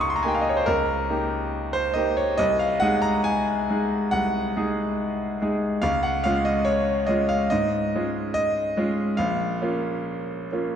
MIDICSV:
0, 0, Header, 1, 2, 480
1, 0, Start_track
1, 0, Key_signature, -5, "major"
1, 0, Tempo, 863309
1, 1323, Time_signature, 4, 2, 24, 8
1, 2772, Tempo, 842697
1, 5652, Tempo, 950872
1, 6014, End_track
2, 0, Start_track
2, 0, Title_t, "Grand piano"
2, 0, Program_c, 0, 0
2, 0, Control_c, 0, 64, 127
2, 0, Note_on_c, 0, 37, 80
2, 0, Note_on_c, 0, 58, 58
2, 0, Note_on_c, 0, 63, 60
2, 0, Note_on_c, 0, 67, 62
2, 0, Note_on_c, 0, 82, 109
2, 0, Note_on_c, 0, 84, 85
2, 0, Note_on_c, 0, 87, 81
2, 6, Note_on_c, 0, 85, 87
2, 54, Note_off_c, 0, 84, 0
2, 54, Note_on_c, 0, 84, 80
2, 87, Note_off_c, 0, 82, 0
2, 87, Note_on_c, 0, 82, 72
2, 93, Note_off_c, 0, 84, 0
2, 111, Note_off_c, 0, 58, 0
2, 113, Note_off_c, 0, 63, 0
2, 113, Note_off_c, 0, 67, 0
2, 125, Note_off_c, 0, 82, 0
2, 125, Note_on_c, 0, 80, 70
2, 136, Note_on_c, 0, 58, 51
2, 138, Note_on_c, 0, 63, 49
2, 140, Note_on_c, 0, 67, 57
2, 156, Note_on_c, 0, 79, 65
2, 160, Note_off_c, 0, 80, 0
2, 191, Note_on_c, 0, 77, 71
2, 193, Note_off_c, 0, 79, 0
2, 230, Note_on_c, 0, 75, 73
2, 232, Note_off_c, 0, 77, 0
2, 274, Note_off_c, 0, 75, 0
2, 274, Note_on_c, 0, 73, 71
2, 315, Note_on_c, 0, 72, 73
2, 320, Note_off_c, 0, 73, 0
2, 349, Note_off_c, 0, 58, 0
2, 350, Note_off_c, 0, 63, 0
2, 351, Note_off_c, 0, 67, 0
2, 365, Note_off_c, 0, 72, 0
2, 367, Note_on_c, 0, 70, 94
2, 377, Note_off_c, 0, 37, 0
2, 377, Note_on_c, 0, 37, 64
2, 378, Control_c, 0, 64, 0
2, 381, Note_off_c, 0, 85, 0
2, 382, Note_off_c, 0, 87, 0
2, 452, Control_c, 0, 64, 127
2, 601, Note_off_c, 0, 37, 0
2, 608, Note_on_c, 0, 58, 53
2, 610, Note_on_c, 0, 63, 51
2, 615, Note_on_c, 0, 67, 57
2, 961, Note_off_c, 0, 70, 0
2, 962, Note_on_c, 0, 72, 94
2, 1062, Note_off_c, 0, 58, 0
2, 1063, Note_off_c, 0, 63, 0
2, 1065, Note_off_c, 0, 67, 0
2, 1076, Note_on_c, 0, 75, 87
2, 1083, Note_off_c, 0, 72, 0
2, 1086, Note_on_c, 0, 58, 50
2, 1089, Note_on_c, 0, 63, 54
2, 1093, Note_on_c, 0, 67, 57
2, 1200, Note_off_c, 0, 75, 0
2, 1205, Note_on_c, 0, 73, 85
2, 1303, Note_off_c, 0, 58, 0
2, 1304, Note_off_c, 0, 63, 0
2, 1306, Note_off_c, 0, 67, 0
2, 1321, Note_on_c, 0, 75, 108
2, 1324, Note_off_c, 0, 73, 0
2, 1330, Note_on_c, 0, 36, 76
2, 1333, Control_c, 0, 64, 0
2, 1408, Control_c, 0, 64, 127
2, 1442, Note_off_c, 0, 75, 0
2, 1442, Note_on_c, 0, 77, 81
2, 1555, Note_on_c, 0, 78, 102
2, 1559, Note_off_c, 0, 36, 0
2, 1562, Note_off_c, 0, 77, 0
2, 1565, Note_on_c, 0, 56, 57
2, 1567, Note_on_c, 0, 63, 56
2, 1570, Note_on_c, 0, 68, 65
2, 1678, Note_on_c, 0, 82, 94
2, 1679, Note_off_c, 0, 78, 0
2, 1801, Note_off_c, 0, 82, 0
2, 1801, Note_on_c, 0, 80, 95
2, 2026, Note_off_c, 0, 56, 0
2, 2027, Note_off_c, 0, 63, 0
2, 2028, Note_off_c, 0, 68, 0
2, 2056, Note_on_c, 0, 56, 47
2, 2059, Note_on_c, 0, 63, 49
2, 2061, Note_on_c, 0, 68, 55
2, 2271, Note_off_c, 0, 56, 0
2, 2273, Note_off_c, 0, 63, 0
2, 2274, Note_off_c, 0, 68, 0
2, 2286, Note_on_c, 0, 78, 99
2, 2288, Note_off_c, 0, 80, 0
2, 2295, Note_on_c, 0, 36, 59
2, 2527, Note_off_c, 0, 36, 0
2, 2540, Note_on_c, 0, 56, 51
2, 2541, Note_on_c, 0, 68, 56
2, 2542, Note_on_c, 0, 63, 55
2, 2992, Note_off_c, 0, 56, 0
2, 2992, Note_off_c, 0, 63, 0
2, 2992, Note_off_c, 0, 68, 0
2, 3018, Note_on_c, 0, 56, 50
2, 3020, Note_on_c, 0, 63, 49
2, 3023, Note_on_c, 0, 68, 54
2, 3229, Note_off_c, 0, 56, 0
2, 3231, Note_off_c, 0, 63, 0
2, 3232, Note_off_c, 0, 68, 0
2, 3245, Note_on_c, 0, 77, 100
2, 3247, Note_off_c, 0, 78, 0
2, 3253, Note_on_c, 0, 37, 70
2, 3258, Control_c, 0, 64, 0
2, 3363, Control_c, 0, 64, 127
2, 3365, Note_on_c, 0, 78, 86
2, 3367, Note_off_c, 0, 77, 0
2, 3484, Note_off_c, 0, 37, 0
2, 3484, Note_on_c, 0, 77, 97
2, 3487, Note_off_c, 0, 78, 0
2, 3494, Note_on_c, 0, 56, 55
2, 3494, Note_on_c, 0, 61, 52
2, 3498, Note_on_c, 0, 65, 56
2, 3605, Note_on_c, 0, 75, 85
2, 3606, Note_off_c, 0, 77, 0
2, 3718, Note_on_c, 0, 73, 94
2, 3725, Note_off_c, 0, 75, 0
2, 3944, Note_off_c, 0, 56, 0
2, 3944, Note_off_c, 0, 61, 0
2, 3946, Note_off_c, 0, 65, 0
2, 3956, Note_on_c, 0, 75, 81
2, 3959, Note_off_c, 0, 73, 0
2, 3968, Note_on_c, 0, 56, 53
2, 3971, Note_on_c, 0, 61, 48
2, 3975, Note_on_c, 0, 65, 48
2, 4080, Note_off_c, 0, 75, 0
2, 4083, Note_on_c, 0, 77, 83
2, 4185, Note_off_c, 0, 56, 0
2, 4187, Note_off_c, 0, 61, 0
2, 4189, Note_off_c, 0, 65, 0
2, 4204, Note_on_c, 0, 75, 95
2, 4205, Note_off_c, 0, 77, 0
2, 4215, Control_c, 0, 64, 0
2, 4215, Note_on_c, 0, 44, 57
2, 4290, Control_c, 0, 64, 127
2, 4446, Note_off_c, 0, 44, 0
2, 4462, Note_on_c, 0, 56, 48
2, 4464, Note_on_c, 0, 61, 50
2, 4465, Note_on_c, 0, 65, 50
2, 4674, Note_off_c, 0, 75, 0
2, 4683, Note_on_c, 0, 75, 99
2, 4907, Note_off_c, 0, 56, 0
2, 4908, Note_off_c, 0, 61, 0
2, 4909, Note_off_c, 0, 65, 0
2, 4929, Note_on_c, 0, 56, 53
2, 4932, Note_on_c, 0, 61, 51
2, 4934, Note_on_c, 0, 65, 56
2, 5143, Note_off_c, 0, 56, 0
2, 5145, Note_off_c, 0, 61, 0
2, 5146, Note_off_c, 0, 65, 0
2, 5156, Note_on_c, 0, 77, 91
2, 5161, Note_off_c, 0, 75, 0
2, 5165, Note_on_c, 0, 34, 72
2, 5173, Control_c, 0, 64, 0
2, 5246, Control_c, 0, 64, 127
2, 5398, Note_off_c, 0, 34, 0
2, 5410, Note_on_c, 0, 58, 55
2, 5412, Note_on_c, 0, 61, 53
2, 5415, Note_on_c, 0, 65, 54
2, 5868, Note_off_c, 0, 58, 0
2, 5869, Note_off_c, 0, 61, 0
2, 5871, Note_off_c, 0, 65, 0
2, 5895, Note_on_c, 0, 58, 49
2, 5897, Note_on_c, 0, 61, 48
2, 5899, Note_on_c, 0, 65, 48
2, 6014, Note_off_c, 0, 58, 0
2, 6014, Note_off_c, 0, 61, 0
2, 6014, Note_off_c, 0, 65, 0
2, 6014, Note_off_c, 0, 77, 0
2, 6014, End_track
0, 0, End_of_file